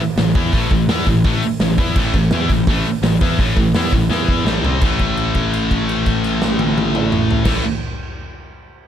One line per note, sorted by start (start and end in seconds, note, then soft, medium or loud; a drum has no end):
0.16 0.33 A1 medium
0.16 0.32 A2 medium
0.16 0.33 E3 medium
0.16 snare loud
0.16 open hi-hat loud
0.35 0.52 E2 loud
0.35 0.53 E3 loud
0.35 0.54 B3 loud
0.35 0.54 E4 loud
0.35 kick loud
0.35 open hi-hat medium
0.53 0.70 A1 loud
0.53 0.71 A2 medium
0.53 0.71 E3 loud
0.53 0.71 A3 loud
0.53 kick loud
0.53 open hi-hat medium
0.71 0.88 A1 medium
0.71 0.86 A2 medium
0.71 0.86 E3 medium
0.71 kick loud
0.71 open hi-hat medium
0.88 1.05 E2 loud
0.88 1.06 E3 medium
0.88 1.07 B3 medium
0.88 1.07 E4 loud
0.88 snare loud
0.88 open hi-hat loud
1.06 1.23 A1 medium
1.06 1.22 A2 medium
1.06 1.22 E3 medium
1.06 kick medium
1.06 open hi-hat medium
1.24 1.41 A1 loud
1.24 1.42 A2 loud
1.24 1.42 E3 loud
1.24 1.43 A3 loud
1.24 kick loud
1.24 open hi-hat medium
1.42 open hi-hat medium
1.59 1.77 A1 medium
1.59 1.75 A2 medium
1.59 1.75 E3 medium
1.59 snare loud
1.59 open hi-hat medium
1.78 1.95 E2 loud
1.78 1.96 E3 loud
1.78 1.96 B3 loud
1.78 1.96 E4 loud
1.78 kick loud
1.78 open hi-hat medium
1.96 2.13 A1 loud
1.96 2.14 A2 loud
1.96 2.14 E3 loud
1.96 2.15 A3 loud
1.96 kick loud
1.96 crash loud
2.14 2.31 A1 medium
2.14 2.29 A2 medium
2.14 2.29 E3 medium
2.14 kick loud
2.14 open hi-hat medium
2.23 snare soft
2.31 2.48 E2 loud
2.31 2.50 E3 loud
2.31 2.50 B3 loud
2.31 2.50 E4 loud
2.31 snare loud
2.31 open hi-hat medium
2.49 2.66 A1 medium
2.49 2.65 A2 medium
2.49 2.65 E3 medium
2.49 kick medium
2.49 open hi-hat medium
2.67 2.84 A1 loud
2.67 2.86 A2 medium
2.67 2.86 E3 loud
2.67 kick loud
2.67 open hi-hat medium
2.71 2.87 A3 loud
2.85 open hi-hat medium
3.02 3.19 A1 medium
3.02 3.17 A2 medium
3.02 3.18 E3 medium
3.02 snare loud
3.02 open hi-hat loud
3.21 3.38 E2 loud
3.21 3.38 E3 loud
3.21 3.39 B3 loud
3.21 3.39 E4 loud
3.21 kick loud
3.21 open hi-hat medium
3.38 3.55 A1 loud
3.38 3.56 A2 medium
3.38 3.57 E3 loud
3.38 3.57 A3 loud
3.38 kick loud
3.38 open hi-hat medium
3.56 3.72 A1 medium
3.56 3.72 A2 medium
3.56 3.72 E3 medium
3.56 kick loud
3.56 open hi-hat medium
3.73 3.90 E2 medium
3.73 3.92 E3 medium
3.73 3.92 B3 loud
3.73 3.93 E4 loud
3.73 snare loud
3.73 open hi-hat loud
3.92 4.09 A1 medium
3.92 4.07 A2 medium
3.92 4.07 E3 medium
3.92 kick medium
3.92 open hi-hat medium
4.09 4.43 E2 loud
4.09 4.44 E3 medium
4.09 4.45 B3 loud
4.09 4.45 E4 loud
4.09 snare medium
4.29 kick medium
4.45 4.62 A1 medium
4.45 4.63 A2 medium
4.45 4.63 E3 loud
4.45 4.63 A3 loud
4.45 snare loud
4.62 4.80 C2 loud
4.62 4.81 C3 loud
4.62 4.81 G3 loud
4.62 4.82 C4 loud
4.62 floor tom loud
4.81 7.37 A1 loud
4.81 7.44 A2 medium
4.81 7.47 E3 loud
4.81 kick loud
4.81 crash medium
4.87 7.49 A3 loud
4.99 kick medium
4.99 crash soft
5.17 crash soft
5.35 kick medium
5.35 crash soft
5.53 crash medium
5.71 kick medium
5.71 crash medium
5.89 crash medium
6.06 kick medium
6.06 crash medium
6.24 crash medium
6.42 snare loud
6.59 high tom loud
6.78 high tom loud
6.95 mid tom loud
7.12 mid tom loud
7.31 floor tom loud
7.45 7.61 A1 loud
7.45 7.61 A2 medium
7.45 7.63 E3 loud
7.45 kick loud
7.45 snare loud
7.45 crash loud
7.49 7.63 A3 loud